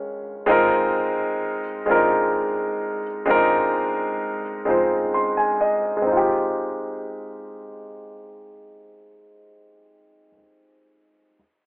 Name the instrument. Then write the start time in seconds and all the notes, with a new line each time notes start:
grand piano
Already playing: D#3 G#3 C#4
0.46 G#3 C4 D#4 F4
0.51 A#4
1.86 G#3 C4 D4 F4
1.91 A#4
1.95 D#4
3.26 G#3 C4 D4 F4
3.31 A#4
3.35 D#4
4.65 G#3 C4 D#4 F4
4.70 C5
5.14 C6
5.37 G#5
5.61 D#5
5.97 G#3
6.02 C4
6.07 D#4
6.12 F4
6.17 G4